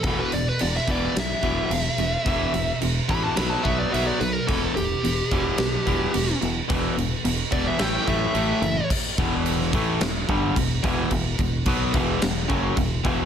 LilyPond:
<<
  \new Staff \with { instrumentName = "Lead electric guitar" } { \time 4/4 \key e \minor \tempo 4 = 108 a'16 b'16 d''16 b'16 d''16 e''16 d''8 e''2~ | e''4 r8 b''16 a''16 b''16 a''16 e''16 d''16 e''16 d''16 b'16 ais'16 | a'8 g'2. r8 | r4. d''16 e''16 g''8 e''4. |
r1 | r1 | }
  \new Staff \with { instrumentName = "Overdriven electric guitar" } { \clef bass \time 4/4 \key e \minor <e, b, e>8 <e, b,>8 <e, b,>8 <e, b, e>8 <e, b,>8 <e, b, e>8 <e, b,>8 <e, b,>8 | <e, b, e>8 <e, b,>8 <e, b,>8 <e, b, e>8 <b, fis b>8 <b, fis b>8 <b, fis b>8 <b, fis>8 | <e, b, e>8 <e, b,>8 <e, b,>8 <e, b, e>8 <e, b,>8 <e, b, e>8 <e, b,>8 <e, b,>8 | <e, b, e>8 <e, b,>8 <e, b,>8 <e, b, e>8 <a, e a>8 <a, e a>8 <a, e a>8 <a, e>8 |
r8 <e, b, e>4 <a, e a>8 <e, b,>8 <g, d g>8 <e, b,>8 <e, b, e>8 | <e, b,>8 <e, b,>8 <b, fis b>8 <e, b, e>8 <e, b,>8 <fis, cis fis>8 <e, b,>8 <e, b, e>8 | }
  \new Staff \with { instrumentName = "Fingered electric bass" } { \clef bass \time 4/4 \key e \minor e,,8 e,,8 e,,8 e,,8 b,,8 e,,8 e,,8 e,,8 | e,,8 e,,8 e,,8 a,,8 b,,8 b,,8 b,,8 b,,8 | e,,8 e,,8 e,,8 e,,8 b,,8 e,,8 e,,8 e,,8 | e,,8 e,,8 e,,8 e,,8 a,,8 a,,8 a,,8 fis,,8 |
r8 e,,4 a,,8 e,,8 g,,8 e,,8 e,,8 | e,,8 e,,8 b,,8 e,,8 e,,8 fis,,8 e,,8 e,,8 | }
  \new DrumStaff \with { instrumentName = "Drums" } \drummode { \time 4/4 <cymc bd>8 cymc8 cymc16 sn16 <cymc bd>8 <cymc sn>8 <cymc bd>8 cymc8 cymc8 | <cymc bd>8 cymc8 cymc8 <cymc bd>8 <cymc sn>8 <cymc bd>8 cymc8 cymc8 | <cymc bd>8 cymc8 cymc8 <cymc bd>8 <cymc sn>8 <cymc bd>8 cymc8 cymc8 | <cymc bd>8 cymc8 cymc8 <cymc bd>8 <cymc sn>8 <cymc bd>8 cymc8 cymc8 |
<cymc bd>8 <cymc bd>8 cymc16 sn16 <cymc bd>8 <cymc sn>8 <cymc bd>8 <cymc bd>8 <cymc bd>8 | <cymc bd>8 <cymc bd>8 <cymc bd>8 <cymc bd>8 <cymc sn>8 <cymc bd>8 <cymc bd>8 <cymc bd>8 | }
>>